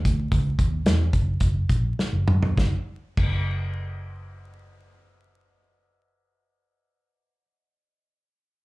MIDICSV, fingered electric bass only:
0, 0, Header, 1, 2, 480
1, 0, Start_track
1, 0, Tempo, 551471
1, 271, Time_signature, 4, 2, 24, 8
1, 1720, Tempo, 597610
1, 7075, End_track
2, 0, Start_track
2, 0, Title_t, "Fingered electric bass"
2, 0, Program_c, 0, 33
2, 48, Note_on_c, 0, 38, 91
2, 234, Note_off_c, 0, 38, 0
2, 277, Note_on_c, 0, 37, 109
2, 466, Note_off_c, 0, 37, 0
2, 510, Note_on_c, 0, 39, 73
2, 702, Note_off_c, 0, 39, 0
2, 744, Note_on_c, 0, 40, 82
2, 940, Note_off_c, 0, 40, 0
2, 989, Note_on_c, 0, 30, 80
2, 1185, Note_off_c, 0, 30, 0
2, 1230, Note_on_c, 0, 30, 82
2, 1430, Note_off_c, 0, 30, 0
2, 1475, Note_on_c, 0, 34, 78
2, 1678, Note_off_c, 0, 34, 0
2, 1840, Note_on_c, 0, 30, 84
2, 1935, Note_off_c, 0, 30, 0
2, 1960, Note_on_c, 0, 42, 91
2, 2154, Note_off_c, 0, 42, 0
2, 2200, Note_on_c, 0, 30, 82
2, 2331, Note_off_c, 0, 30, 0
2, 2685, Note_on_c, 0, 30, 86
2, 6111, Note_off_c, 0, 30, 0
2, 7075, End_track
0, 0, End_of_file